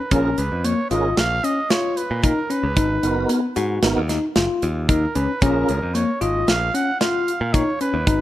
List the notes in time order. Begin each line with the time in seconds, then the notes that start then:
Already playing: B4
0.11 A#1 C#4 F4 G#4 A#4, kick, closed hi-hat
0.38 C#2 B4, closed hi-hat
0.52 F2
0.65 A#3 C#5, closed hi-hat
0.91 G#1 C#4 F4 G#4 A#4 D#5, closed hi-hat
1.17 A#1 F5, snare, closed hi-hat
1.44 C#4 D#5, closed hi-hat
1.70 F4 C#5, snare, closed hi-hat
1.97 B4, closed hi-hat
2.11 A#2
2.23 D#4 A#4, kick, closed hi-hat
2.50 C#4 B4, closed hi-hat
2.63 C#2
2.76 G#1 D#4, kick, closed hi-hat
3.03 F#1 B3 D#4 F#4 A#4, closed hi-hat
3.29 B3, closed hi-hat
3.56 G#2 F#4, closed hi-hat
3.83 G#1 B3 D#4 F#4 A#4, snare, closed hi-hat
3.97 D#2
4.09 D#4, snare, closed hi-hat
4.36 F#1 F4, snare, closed hi-hat
4.62 D#2, closed hi-hat
4.89 D#4 A#4, kick, closed hi-hat
5.15 C#2 C#4 B4, closed hi-hat
5.42 A#1 C#4 F4 G#4 A#4, kick, closed hi-hat
5.69 C#2, closed hi-hat
5.82 F2
5.94 A#3 C#5, closed hi-hat
6.21 G#1 F4 D#5, closed hi-hat
6.48 A#1 F5, snare, closed hi-hat
6.74 C#4 F#5, closed hi-hat
7.01 F4 F5, snare, closed hi-hat
7.28 closed hi-hat
7.41 A#2
7.54 D#4 C#5, kick, closed hi-hat
7.81 C#4 B4, closed hi-hat
7.94 D#2
8.07 G#1 D#4, kick, closed hi-hat